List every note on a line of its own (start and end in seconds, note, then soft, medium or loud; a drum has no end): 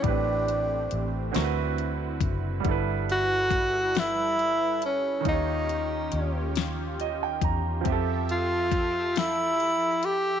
0.02 0.87 A1 medium
0.02 1.33 A2 medium
0.02 1.34 E3 medium
0.02 1.33 A3 medium
0.02 0.10 B3 soft
0.02 2.62 C4 medium
0.02 1.34 D4 medium
0.02 1.35 D4 medium
0.02 1.33 G4 medium
0.02 kick loud
0.02 closed hi-hat medium
0.07 1.35 G4 medium
0.07 1.36 B4 medium
0.11 1.32 C4 medium
0.48 closed hi-hat medium
0.91 1.31 A1 medium
0.91 closed hi-hat medium
1.32 2.18 D2 medium
1.32 2.61 D3 medium
1.32 2.63 D3 medium
1.32 2.64 C4 medium
1.32 5.21 E4 medium
1.32 2.64 E4 medium
1.32 2.63 F#4 medium
1.32 5.22 B4 medium
1.32 closed hi-hat medium
1.36 2.65 F#4 medium
1.36 1.42 A#4 medium
1.36 snare medium
1.44 2.69 B4 medium
1.78 closed hi-hat soft
2.21 2.61 F#1 medium
2.21 kick medium
2.21 closed hi-hat medium
2.60 5.20 D3 medium
2.60 5.19 G3 medium
2.60 5.22 G3 medium
2.60 5.22 A4 medium
2.65 5.22 G1 medium
2.65 5.22 E4 medium
2.65 kick loud
2.65 closed hi-hat medium
2.69 5.23 A4 medium
2.69 5.24 B4 medium
3.09 4.00 F#4 loud
3.09 closed hi-hat medium
3.51 kick medium
3.51 closed hi-hat medium
3.95 4.83 E4 loud
3.95 snare loud
3.95 closed hi-hat medium
4.39 closed hi-hat soft
4.82 5.24 C#4 medium
4.82 closed hi-hat medium
5.21 7.80 D#3 medium
5.21 7.81 D#4 medium
5.25 6.08 D#2 medium
5.25 7.84 D#3 medium
5.25 7.83 C#4 medium
5.25 6.53 D#4 medium
5.25 7.83 F4 medium
5.25 7.82 F4 medium
5.25 7.83 G4 medium
5.25 kick loud
5.25 closed hi-hat medium
5.29 7.84 G4 medium
5.29 7.85 C#5 medium
5.69 closed hi-hat medium
6.12 7.39 D#2 medium
6.12 closed hi-hat medium
6.56 snare loud
6.56 closed hi-hat medium
7.00 7.20 D#5 medium
7.00 closed hi-hat medium
7.23 7.42 G5 medium
7.42 7.82 E2 medium
7.42 7.84 A#5 medium
7.42 kick medium
7.42 closed hi-hat medium
7.81 10.40 F3 medium
7.81 10.40 C4 medium
7.81 10.40 G4 medium
7.81 closed hi-hat medium
7.85 10.40 F2 loud
7.85 10.40 A4 medium
7.85 10.40 E5 medium
7.85 kick loud
7.90 10.40 G4 medium
7.90 10.40 A4 medium
8.29 9.20 F4 loud
8.29 closed hi-hat medium
8.72 kick medium
8.72 closed hi-hat medium
9.16 10.06 E4 medium
9.16 snare loud
9.16 closed hi-hat medium
9.60 closed hi-hat soft
10.03 10.40 G4 loud
10.03 closed hi-hat medium